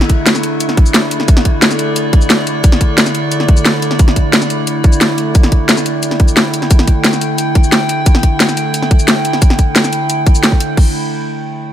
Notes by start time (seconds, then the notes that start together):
Already playing: D3 A3 E4 D5
0.01 snare
0.10 kick, closed hi-hat
0.26 snare, closed hi-hat, shaker
0.35 snare, shaker
0.43 closed hi-hat, shaker
0.60 closed hi-hat, shaker
0.69 snare
0.77 kick, closed hi-hat
0.86 shaker
0.94 snare, closed hi-hat, shaker
1.11 closed hi-hat, shaker
1.20 snare
1.28 kick, closed hi-hat, shaker
1.37 snare
1.45 kick, closed hi-hat
1.62 snare, closed hi-hat, shaker
1.71 snare, shaker
1.79 closed hi-hat, shaker
1.96 closed hi-hat, shaker
2.13 kick, closed hi-hat
2.22 shaker
2.30 snare, closed hi-hat, shaker
2.47 closed hi-hat, shaker
2.64 kick, closed hi-hat, shaker
2.72 snare
2.81 kick, closed hi-hat
2.98 snare, closed hi-hat, shaker
3.06 snare, shaker
3.15 closed hi-hat, shaker
3.32 closed hi-hat, shaker
3.40 snare
3.48 kick, closed hi-hat
3.57 shaker
3.65 snare, closed hi-hat, shaker
3.82 closed hi-hat, shaker
3.91 snare
3.99 kick, closed hi-hat, shaker
4.08 snare
4.16 kick, closed hi-hat
4.33 snare, closed hi-hat, shaker
4.42 snare, shaker
4.50 closed hi-hat, shaker
4.67 closed hi-hat, shaker
4.84 kick, closed hi-hat, shaker
4.93 shaker
5.01 snare, closed hi-hat, shaker
5.18 closed hi-hat, shaker
5.35 G5, kick, closed hi-hat, shaker
5.43 snare
5.52 kick, closed hi-hat
5.69 snare, closed hi-hat, shaker
5.77 snare, shaker
5.86 closed hi-hat, shaker
6.03 closed hi-hat, shaker
6.11 snare
6.20 kick, closed hi-hat
6.28 shaker
6.37 snare, closed hi-hat, shaker
6.54 closed hi-hat, shaker
6.62 snare
6.71 kick, closed hi-hat, shaker
6.79 snare
6.87 kick, closed hi-hat
7.04 snare, closed hi-hat, shaker
7.13 snare, shaker
7.21 closed hi-hat, shaker
7.38 closed hi-hat, shaker
7.55 kick, closed hi-hat
7.64 shaker
7.72 snare, closed hi-hat, shaker
7.89 closed hi-hat, shaker
8.06 kick, closed hi-hat, shaker
8.15 snare
8.23 kick, closed hi-hat
8.40 snare, closed hi-hat, shaker
8.49 snare, shaker
8.57 closed hi-hat, shaker
8.74 closed hi-hat, shaker
8.82 snare
8.91 kick, closed hi-hat
8.99 shaker
9.08 snare, closed hi-hat, shaker
9.25 closed hi-hat, shaker
9.33 snare
9.42 kick, closed hi-hat, shaker
9.50 snare
9.59 kick, closed hi-hat, shaker
9.76 snare, closed hi-hat, shaker
9.84 snare, shaker
9.93 closed hi-hat, shaker
10.10 closed hi-hat, shaker
10.27 kick, closed hi-hat, shaker
10.35 shaker
10.44 snare, closed hi-hat, shaker
10.52 kick
10.60 closed hi-hat, shaker
10.77 kick, crash